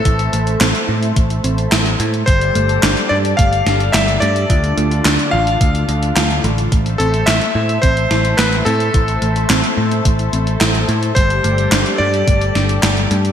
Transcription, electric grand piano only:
\new Staff \with { instrumentName = "Electric grand piano" } { \time 4/4 \key a \minor \tempo 4 = 108 a'4 r2. | c''4. d''8 f''4 e''8 d''8~ | d''4. f''2 r8 | r8 a'8 e''4 c''4 b'8 a'8~ |
a'4 r2. | c''4. d''2~ d''8 | }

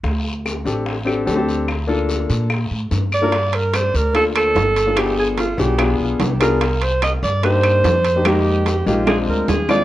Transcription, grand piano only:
\new Staff \with { instrumentName = "Grand piano" } { \time 4/4 \key g \minor \tempo 4 = 146 r4. <c' d' g' a'>8. r16 <c' d' g' a'>16 r16 <c' d' g' a'>16 <c' d' g' a'>8. | r8 <bes d' f' a'>4. r4. r16 <bes d' f' bes'>16 | r2 <bes d' f' a'>4~ <bes d' f' a'>16 r8 <bes d' f' a'>16 | <b d' f' aes'>4 r8 <b d' f' aes'>16 r16 <b d' f' aes'>4 r8 <b d' f' aes'>8 |
r2 <bes d' ees' g'>4~ <bes d' ees' g'>16 r8 <bes d' ees' g'>16 | <aes bes ees' g'>4 r8 <aes bes ees' g'>16 r16 <aes c' d' f'>4 r8 <aes c' d' f'>8 | }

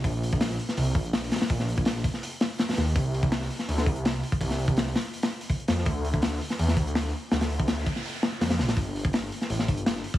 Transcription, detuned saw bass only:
\new Staff \with { instrumentName = "Detuned saw bass" } { \clef bass \time 4/4 \key bes \major \tempo 4 = 165 bes,,4. r8 c,8 bes,,4 r8 | bes,,4. r2 ees,8 | c,4. r8 d,8 c,4 r8 | c,4. r2 f,8 |
d,4. r8 e,8 d,4 r8 | d,4. r4. f,8 a,,8 | g,,4. r8 a,,8 g,,4 r8 | }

